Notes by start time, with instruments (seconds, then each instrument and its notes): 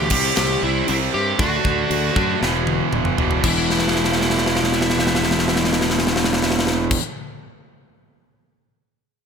Already playing: fingered electric bass D2, overdriven electric guitar B2 E3, lead electric guitar G4
0.10 fingered electric bass C2, overdriven electric guitar C3 G3, lead electric guitar G4, kick, crash
0.14 overdriven electric guitar C4
0.36 fingered electric bass C2, lead electric guitar G4, snare, crash
0.63 fingered electric bass C2, lead electric guitar E4
0.88 fingered electric bass C2, overdriven electric guitar C3 G3 C4, lead electric guitar E4, crash
1.14 fingered electric bass G2, lead electric guitar G4
1.38 fingered electric bass D2, overdriven electric guitar D3 A3 D4, lead electric guitar F#4, kick, crash
1.65 fingered electric bass D2, kick
1.91 fingered electric bass D2, crash
2.15 fingered electric bass F#2, overdriven electric guitar D3 A3 D4, kick
2.41 fingered electric bass E1, overdriven electric guitar E2 B2 E3, snare
2.67 high tom
2.93 fingered electric bass E1, mid tom
3.05 mid tom
3.17 fingered electric bass E1, overdriven electric guitar E2 B2 E3, floor tom
3.31 floor tom
3.43 fingered electric bass E1, overdriven electric guitar E2 B2 E3, lead electric guitar E4, kick, crash
3.70 snare
3.79 snare
3.88 snare
3.96 snare
4.04 snare
4.12 snare
4.21 snare
4.30 snare
4.38 snare
4.46 snare
4.55 snare
4.64 snare
4.72 snare
4.81 snare
4.90 snare
4.99 snare
5.07 snare
5.15 snare
5.24 snare
5.31 snare
5.39 snare
5.48 snare
5.56 snare
5.64 snare
5.73 snare
5.81 snare
5.90 snare
5.99 snare
6.07 snare
6.16 snare
6.24 snare
6.33 snare
6.42 snare
6.51 snare
6.59 snare
6.67 snare
6.91 kick, crash